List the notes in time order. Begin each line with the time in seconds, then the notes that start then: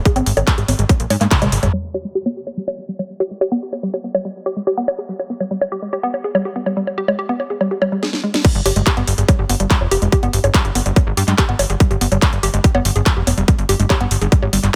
0.05 G#4, kick, closed hi-hat
0.16 G#1 C4, closed hi-hat, high bongo
0.26 G#1, open hi-hat
0.37 G#1 A#4, closed hi-hat, high bongo
0.47 G#3, kick, clap, closed hi-hat
0.58 G#1 G#4, closed hi-hat
0.68 G#1 C4, open hi-hat, high bongo
0.79 G#1 G#3, closed hi-hat
0.89 G#3, kick, closed hi-hat, high bongo
1.00 A#1, closed hi-hat
1.10 G#2 G#3, open hi-hat, high bongo
1.21 G#2 A#3, clap, closed hi-hat
1.31 A#4, kick, clap, closed hi-hat, high tom
1.42 A#1 G#3, closed hi-hat, high tom, high bongo
1.52 G#1, open hi-hat
1.63 G#1 G#3, closed hi-hat, mid tom, high bongo
1.73 G3, high bongo
1.94 G4, high bongo
2.05 G#3
2.15 G4
2.26 B3, high bongo
2.47 G#4, high bongo
2.57 G3
2.68 G4, high bongo
2.78 B3
2.89 G3
2.99 G3, high bongo
3.20 G4, high bongo
3.31 G#3
3.41 G4, high bongo
3.52 B3
3.73 G#4, high bongo
3.83 G3
3.94 G4, high bongo
4.04 B3
4.15 G3, high bongo
4.25 G3
4.46 G4, high bongo
4.57 G#3
4.67 G4, high bongo
4.77 B3
4.88 high bongo
4.98 G#4
5.09 G3
5.19 G4, high bongo
5.30 B3
5.40 G3, high bongo
5.51 G3
5.61 high bongo
5.72 G4
5.82 G#3
5.93 G4, high bongo
6.03 B3
6.14 high bongo
6.24 G#4
6.35 G3, high bongo
6.45 G4
6.56 B3
6.66 G3, high bongo
6.77 G3
6.87 high bongo
6.98 G4
7.08 G#3, high bongo
7.19 G4
7.29 B3
7.40 high bongo
7.50 G#4
7.61 G3, high bongo
7.71 G4
7.82 G3, high bongo
7.92 G3
8.03 G#4, snare
8.13 snare
8.24 G#3
8.34 G3, snare
8.45 G3, kick, closed hi-hat, crash
8.55 G1, closed hi-hat
8.66 G1 G4, open hi-hat, high bongo
8.76 G1 G#3, closed hi-hat
8.87 G4, kick, clap, closed hi-hat
8.97 G1 B3, closed hi-hat
9.07 G1, open hi-hat
9.18 G1 G#4, closed hi-hat
9.29 G3, kick, closed hi-hat, high bongo
9.39 G1 G4
9.49 G1 B3, open hi-hat
9.60 G1 G3, closed hi-hat
9.70 G3, kick, clap, closed hi-hat
9.81 F1, high bongo
9.91 F1 G4, open hi-hat
10.02 F1 G#3, closed hi-hat
10.12 G4, kick, closed hi-hat
10.23 G1 B3, closed hi-hat
10.33 G1, open hi-hat
10.44 G1 G#4, closed hi-hat, high bongo
10.54 G3, kick, clap, closed hi-hat
10.65 G1 G4, closed hi-hat
10.75 G1 B3, open hi-hat
10.86 G1 G3, closed hi-hat
10.96 G3, kick, closed hi-hat, high bongo
11.07 G#1
11.17 G2 G4, open hi-hat
11.28 G2 G#3, clap, closed hi-hat
11.38 G4, kick, clap, closed hi-hat
11.49 G#1 B3
11.59 G1, open hi-hat, high bongo
11.70 G1 G#4, closed hi-hat
11.80 G3, kick, closed hi-hat
11.91 G1 G4, closed hi-hat
12.01 G1 B3, open hi-hat
12.12 G1 G3, closed hi-hat, high bongo
12.22 G3, kick, clap, closed hi-hat
12.33 G1, closed hi-hat
12.43 G1 G4, open hi-hat
12.54 G1 G#3, closed hi-hat
12.64 G4, kick, closed hi-hat
12.75 G1 B3, high bongo
12.85 G1, open hi-hat
12.96 G1 G#4, closed hi-hat
13.06 G3, kick, clap, closed hi-hat
13.17 F1 G4
13.27 F1 B3, open hi-hat, high bongo
13.38 F1 G3, closed hi-hat
13.48 G3, kick, closed hi-hat
13.59 G1, closed hi-hat
13.69 G1 G4, open hi-hat
13.80 G1 G#3, closed hi-hat
13.90 G4, kick, clap, closed hi-hat, high bongo
14.01 G1 B3, closed hi-hat
14.11 G1, open hi-hat
14.22 G1 G#4, closed hi-hat
14.32 G3, kick, closed hi-hat
14.43 G#1 G4, high bongo
14.53 G1 G3, open hi-hat
14.63 G1 G3, clap, closed hi-hat